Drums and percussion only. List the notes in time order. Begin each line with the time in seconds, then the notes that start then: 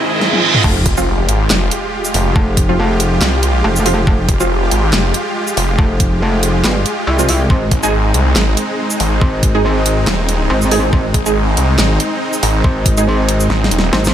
0.21 snare
0.33 high tom
0.55 mid tom
0.64 kick, crash
0.86 kick, closed hi-hat
0.97 shaker
1.29 closed hi-hat
1.50 snare, clap
1.71 closed hi-hat
2.05 shaker
2.14 open hi-hat
2.36 kick
2.57 kick, closed hi-hat
3.00 closed hi-hat
3.21 snare, clap
3.43 closed hi-hat
3.76 shaker
3.86 open hi-hat
4.07 kick
4.29 kick, closed hi-hat
4.40 shaker
4.71 closed hi-hat
4.93 snare, clap
5.14 closed hi-hat
5.47 shaker
5.57 open hi-hat
5.79 kick
6.00 kick, closed hi-hat
6.43 closed hi-hat
6.64 snare, clap
6.86 closed hi-hat
7.19 shaker
7.29 open hi-hat
7.50 kick
7.71 kick, closed hi-hat
7.83 shaker
8.14 closed hi-hat
8.36 snare, clap
8.57 closed hi-hat
8.90 shaker
9.00 open hi-hat
9.21 kick
9.43 kick, closed hi-hat
9.86 closed hi-hat
10.07 snare, clap
10.29 closed hi-hat
10.62 shaker
10.71 open hi-hat
10.93 kick
11.14 kick, closed hi-hat
11.26 shaker
11.57 closed hi-hat
11.79 snare, clap
12.00 closed hi-hat
12.33 shaker
12.43 open hi-hat
12.64 kick
12.86 kick, closed hi-hat
12.97 closed hi-hat, shaker
13.29 closed hi-hat
13.40 shaker
13.50 snare
13.64 snare
13.71 closed hi-hat
13.79 snare
13.93 snare
14.05 snare, shaker